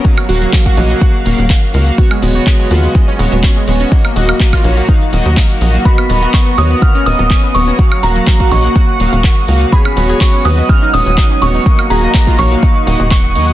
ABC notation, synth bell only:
X:1
M:4/4
L:1/8
Q:1/4=124
K:Ebm
V:1 name="Synth bell"
z8 | z8 | z8 | =b2 d' ^d' f' d'2 _d'- |
d' b2 d'4 z | c'2 d' e' f' e'2 d'- | d' b2 d'3 d'2 |]